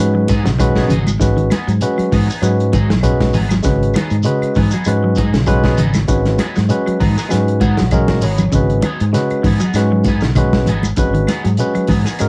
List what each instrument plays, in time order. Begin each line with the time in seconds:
Already playing: tine electric piano G#3
0.00 fingered electric bass G#2, tine electric piano C#4 F#4 B4
0.15 clean electric guitar F#3
0.28 clean electric guitar F#3 B3 D#4 G#4, kick, snare, closed hi-hat, high conga, shekere
0.45 fingered electric bass B1, clean electric guitar C#3, snare, closed hi-hat, shekere
0.59 clean electric guitar D#3, tine electric piano G#3 C#4 F#4 B4, kick, closed hi-hat, high conga, claves, shekere
0.76 clean electric guitar B3 D#4 G#4, kick, snare
0.88 fingered electric bass G#1, clean electric guitar C#3 F#3 D#4 G#4, muted clean electric guitar stroke, closed hi-hat, low conga, shekere
1.07 high conga, claves, shekere
1.20 fingered electric bass G#1, clean electric guitar D#3, tine electric piano G#3 C#4 F#4 B4, kick, snare, closed hi-hat, high conga, low conga, shekere
1.37 clean electric guitar D#3, closed hi-hat
1.50 clean electric guitar B3 D#4 G#4, snare, closed hi-hat, high conga, claves, shekere
1.68 fingered electric bass G#2, clean electric guitar F#3, closed hi-hat, shekere
1.81 tine electric piano G#3 C#4 F#4 B4, closed hi-hat, high conga, shekere
1.98 clean electric guitar F#3, muted fingered electric bass stroke, closed hi-hat, claves
2.12 fingered electric bass G#2, clean electric guitar D#3 F#3 B3 D#4 G#4, kick, open hi-hat, low conga, shekere
2.29 clean electric guitar B3 D#4 G#4, shekere
2.41 fingered electric bass G#2, clean electric guitar F#3, tine electric piano G#3 C#4 F#4 B4, closed hi-hat, high conga, claves, shekere
2.60 closed hi-hat
2.73 clean electric guitar D#3 F#3 D#4 G#4, kick, closed hi-hat, high conga, shekere
2.90 fingered electric bass B1, clean electric guitar F#3, snare, closed hi-hat, shekere
3.01 tine electric piano G#3 C#4 F#4 B4, kick, closed hi-hat, high conga, claves, shekere
3.20 clean electric guitar G#3, kick, snare, closed hi-hat, high conga
3.33 fingered electric bass G#1, clean electric guitar F#3 B3 D#4 G#4, open hi-hat, low conga, shekere
3.49 clean electric guitar F#3, snare, closed hi-hat, high conga, claves, shekere
3.63 fingered electric bass G#1, clean electric guitar C#3, tine electric piano G#3 C#4 F#4 B4, kick, snare, closed hi-hat, high conga, shekere
3.83 closed hi-hat
3.94 clean electric guitar D#3 F#3 B3 D#4 G#4, snare, closed hi-hat, high conga, claves, shekere
4.10 fingered electric bass G#2, closed hi-hat, shekere
4.23 clean electric guitar C#3, tine electric piano G#3 C#4 F#4 B4, closed hi-hat, high conga, shekere
4.42 muted fingered electric bass stroke, closed hi-hat, claves
4.55 fingered electric bass G#2, clean electric guitar D#3 F#3 B3 D#4 G#4, kick, open hi-hat, low conga, shekere
4.71 clean electric guitar F#3 B3 D#4 G#4, closed hi-hat, shekere
4.85 fingered electric bass G#2, tine electric piano G#3 C#4 F#4 B4, closed hi-hat, high conga, low conga, claves, shekere
5.04 clean electric guitar F#3
5.16 clean electric guitar F#3 D#4 G#4, kick, closed hi-hat, high conga, shekere
5.33 fingered electric bass B1, clean electric guitar C#3, snare, closed hi-hat, shekere
5.46 clean electric guitar D#3, tine electric piano G#3 C#4 F#4 B4, kick, closed hi-hat, high conga, claves, shekere
5.64 clean electric guitar B3 D#4 G#4, kick, snare
5.77 fingered electric bass G#1, clean electric guitar C#3 F#3 B3 D#4 G#4, closed hi-hat, low conga, shekere
5.94 snare, high conga, claves, shekere
6.08 fingered electric bass G#1, clean electric guitar D#3, tine electric piano G#3 C#4 F#4 B4, kick, closed hi-hat, shekere
6.25 clean electric guitar D#3, snare, closed hi-hat
6.38 clean electric guitar F#3 B3 D#4 G#4, snare, closed hi-hat, high conga, claves, shekere
6.55 fingered electric bass G#2, clean electric guitar F#3, snare, closed hi-hat, shekere
6.69 tine electric piano G#3 C#4 F#4 B4, closed hi-hat, high conga, shekere
6.86 clean electric guitar F#3, muted fingered electric bass stroke, closed hi-hat, claves
7.00 fingered electric bass G#2, clean electric guitar D#3 F#3 B3 D#4 G#4, tine electric piano A#5, kick, open hi-hat, high conga, low conga, shekere
7.17 clean electric guitar B3 D#4 G#4, snare, shekere
7.29 fingered electric bass G#2, clean electric guitar F#3, tine electric piano G#3 C#4 F#4 B4 G#5, snare, closed hi-hat, high conga, claves, shekere
7.48 closed hi-hat
7.60 clean electric guitar D#3 F#3 B3 D#4 G#4, tine electric piano F#5, kick, closed hi-hat, high conga, shekere
7.77 fingered electric bass B1, clean electric guitar F#3, snare, closed hi-hat, high conga, shekere
7.91 tine electric piano G#3 C#4 F#4 A#4 D#5, kick, closed hi-hat, low conga, claves, shekere
8.08 clean electric guitar G#3, tine electric piano D#5, kick, snare, closed hi-hat, low conga
8.21 fingered electric bass G#1, clean electric guitar F#3 B3 D#4 G#4, tine electric piano C#5, open hi-hat, low conga, shekere
8.38 clean electric guitar F#3, closed hi-hat, low conga, claves, shekere
8.52 fingered electric bass G#1, clean electric guitar C#3, tine electric piano G#3 C#4 F#4 B4, kick, closed hi-hat, high conga, low conga, shekere
8.70 closed hi-hat
8.82 clean electric guitar D#3 F#3 B3 D#4 G#4, closed hi-hat, high conga, claves, shekere
9.00 fingered electric bass G#2, closed hi-hat, shekere
9.13 clean electric guitar C#3, tine electric piano G#3 C#4 F#4 B4, snare, closed hi-hat, high conga, shekere
9.30 muted fingered electric bass stroke, closed hi-hat, claves
9.43 fingered electric bass G#2, clean electric guitar D#3 B3 D#4 G#4, kick, open hi-hat, low conga, shekere
9.60 clean electric guitar F#3 B3 D#4 G#4, closed hi-hat, shekere
9.74 fingered electric bass G#2, tine electric piano G#3 C#4 F#4 B4, snare, closed hi-hat, claves, shekere
9.92 clean electric guitar F#3
10.04 clean electric guitar B3 D#4, muted clean electric guitar stroke, kick, snare, closed hi-hat, high conga, shekere
10.08 clean electric guitar G#4
10.21 fingered electric bass B1, clean electric guitar C#3, snare, closed hi-hat, shekere
10.35 clean electric guitar D#3, tine electric piano G#3 C#4 F#4 B4, kick, closed hi-hat, high conga, claves, shekere
10.53 kick, snare, high conga
10.66 fingered electric bass G#1, clean electric guitar F#3 B3 D#4 G#4, muted clean electric guitar stroke, closed hi-hat, low conga, shekere
10.83 high conga, claves, shekere
10.96 fingered electric bass G#1, clean electric guitar D#3, tine electric piano G#3 C#4 F#4 B4, kick, closed hi-hat, high conga, low conga, shekere
11.14 clean electric guitar D#3, closed hi-hat
11.27 clean electric guitar F#3 B3 D#4 G#4, snare, closed hi-hat, high conga, claves, shekere
11.44 fingered electric bass G#2, clean electric guitar F#3, closed hi-hat, shekere
11.57 tine electric piano G#3 C#4 F#4 B4, closed hi-hat, high conga, shekere
11.75 clean electric guitar F#3, muted fingered electric bass stroke, closed hi-hat, claves
11.87 fingered electric bass G#2, clean electric guitar D#3 F#3 B3 D#4 G#4, kick, open hi-hat, low conga, shekere
12.05 clean electric guitar B3 D#4 G#4, snare, shekere
12.19 fingered electric bass G#2, tine electric piano G#3 C#4 F#4 A#4, muted clean electric guitar stroke, closed hi-hat, high conga, claves, shekere